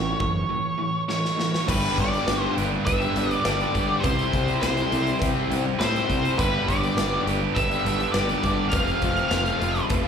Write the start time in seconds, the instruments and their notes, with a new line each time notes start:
Already playing: picked electric bass A1, overdriven electric guitar A2 E3, lead electric guitar C#5
0.20 picked electric bass F#1, overdriven electric guitar A2 E3, kick
0.50 overdriven electric guitar A2 E3
0.79 overdriven electric guitar A2 E3
1.09 overdriven electric guitar A2 E3, lead electric guitar C#5, snare
1.25 snare
1.39 overdriven electric guitar A2 E3, snare
1.54 snare
1.67 picked electric bass G1, overdriven electric guitar G2 D3 G3 B3 D4 G4, lead electric guitar B4, steel-string acoustic guitar B4, kick, crash, cowbell
1.96 picked electric bass G1, overdriven electric guitar G2 D3 G3, steel-string acoustic guitar D4 G4 B4, kick, closed hi-hat
2.01 lead electric guitar D5
2.11 overdriven electric guitar G3 B3 D4 G4, closed hi-hat
2.26 picked electric bass G1, overdriven electric guitar G2 D3 G3 B3 D4 G4, snare, closed hi-hat, cowbell
2.31 steel-string acoustic guitar B4
2.42 lead electric guitar C5
2.56 picked electric bass G1, overdriven electric guitar G2 D3 G3 B3 D4 G4, steel-string acoustic guitar B4, closed hi-hat
2.72 muted overdriven electric guitar stroke
2.85 picked electric bass G1, overdriven electric guitar G2 D3 G3, steel-string acoustic guitar G3 D4 G4 B4, lead electric guitar E5, kick, closed hi-hat, cowbell
3.01 overdriven electric guitar G3 B3 D4 G4, closed hi-hat
3.14 picked electric bass G1, overdriven electric guitar G2 D3 G3 B3 D4, steel-string acoustic guitar B4, closed hi-hat
3.19 overdriven electric guitar G4
3.31 muted overdriven electric guitar stroke, closed hi-hat
3.41 picked electric bass G1, overdriven electric guitar G2, lead electric guitar D5, closed hi-hat
3.45 overdriven electric guitar G2 D3 G3 B3 D4 G4, steel-string acoustic guitar B4, snare, cowbell
3.60 closed hi-hat
3.74 picked electric bass G1, overdriven electric guitar G2 D3 G3 B3 D4, steel-string acoustic guitar B4, kick, closed hi-hat
3.78 overdriven electric guitar G4
4.00 overdriven electric guitar C3, lead electric guitar C5, cowbell
4.04 picked electric bass C2, steel-string acoustic guitar E3, overdriven electric guitar G3 C4 E4 G4 C5, kick, closed hi-hat
4.19 closed hi-hat
4.32 picked electric bass C2, overdriven electric guitar C3 G3 C4, steel-string acoustic guitar G3 C4 E4 C5, kick, closed hi-hat
4.48 overdriven electric guitar C4 E4 G4 C5, closed hi-hat
4.61 picked electric bass C2, overdriven electric guitar C3 G3 C4 E4, lead electric guitar C5, snare, closed hi-hat, cowbell
4.65 overdriven electric guitar G4 C5
4.77 closed hi-hat
4.90 picked electric bass C2, overdriven electric guitar C3 G3 C4 E4 C5, steel-string acoustic guitar C5, closed hi-hat
4.94 steel-string acoustic guitar G3, overdriven electric guitar G4 C5
5.07 muted overdriven electric guitar stroke, closed hi-hat
5.19 picked electric bass C2, overdriven electric guitar C3 G3 C4, steel-string acoustic guitar C3 E3 G3 C4 E4 C5, kick, closed hi-hat, cowbell
5.35 overdriven electric guitar C4 E4 G4 C5
5.49 picked electric bass C2, overdriven electric guitar C3 G3 C4 E4 G4, steel-string acoustic guitar G3 C5, closed hi-hat
5.53 overdriven electric guitar C5
5.65 muted overdriven electric guitar stroke
5.78 picked electric bass A2, overdriven electric guitar C3 G3 C4 E4 G4 C5, lead electric guitar C5, snare, closed hi-hat, cowbell
5.96 closed hi-hat
6.07 picked electric bass C2, overdriven electric guitar C3 G3 C4 E4 G4 C5, steel-string acoustic guitar G3, kick, closed hi-hat
6.25 closed hi-hat
6.36 picked electric bass G1, overdriven electric guitar G2 D3 G3 B3 D4 G4, lead electric guitar B4, kick, closed hi-hat, cowbell
6.41 steel-string acoustic guitar B4
6.66 picked electric bass G1, overdriven electric guitar G2 D3 G3, steel-string acoustic guitar G4 B4, lead electric guitar D5, kick, closed hi-hat
6.71 steel-string acoustic guitar D4
6.82 overdriven electric guitar G3 B3 D4 G4, closed hi-hat
6.96 picked electric bass G1, overdriven electric guitar G2 D3 G3 B3 D4 G4, snare, closed hi-hat, cowbell
7.01 steel-string acoustic guitar B4
7.25 picked electric bass G1, overdriven electric guitar G2 D3 G3 B3 D4 G4, steel-string acoustic guitar B4, closed hi-hat
7.42 muted overdriven electric guitar stroke
7.54 picked electric bass G1, overdriven electric guitar G2 D3 G3, steel-string acoustic guitar G3 D4 G4 B4, lead electric guitar E5, kick, closed hi-hat, cowbell
7.71 overdriven electric guitar G3 B3 D4 G4, closed hi-hat
7.84 picked electric bass G1, overdriven electric guitar G2 D3 G3 B3 D4, steel-string acoustic guitar B4, closed hi-hat
7.89 overdriven electric guitar G4
8.00 muted overdriven electric guitar stroke, closed hi-hat
8.12 picked electric bass G1, overdriven electric guitar G2 D3 G3, lead electric guitar D5, snare, closed hi-hat, cowbell
8.16 overdriven electric guitar B3 D4 G4, steel-string acoustic guitar B4
8.29 closed hi-hat
8.42 picked electric bass G1, overdriven electric guitar G2 D3 G3 B3 D4, steel-string acoustic guitar B4, kick, closed hi-hat
8.47 overdriven electric guitar G4
8.69 overdriven electric guitar F2, lead electric guitar F5, closed hi-hat, cowbell
8.73 picked electric bass F1, overdriven electric guitar F2 C3 F3 A3 C4 F4, steel-string acoustic guitar C5, kick
8.87 closed hi-hat
9.01 picked electric bass F1, overdriven electric guitar F2 C3 F3, steel-string acoustic guitar F4 C5, kick, closed hi-hat
9.05 steel-string acoustic guitar C4
9.17 overdriven electric guitar F3 A3 C4 F4, closed hi-hat
9.28 picked electric bass F1, overdriven electric guitar F2 C3 F3, lead electric guitar F5, snare, closed hi-hat, cowbell
9.32 overdriven electric guitar F3 A3 C4 F4, steel-string acoustic guitar C5
9.46 closed hi-hat
9.60 picked electric bass F1, overdriven electric guitar F2 C3 F3 A3 C4 F4, steel-string acoustic guitar C5, closed hi-hat
9.75 muted overdriven electric guitar stroke, closed hi-hat
9.89 picked electric bass F1, overdriven electric guitar F2 C3 F3, steel-string acoustic guitar F3 A3 C4 F4 C5, kick, closed hi-hat, cowbell
10.04 overdriven electric guitar C4 F4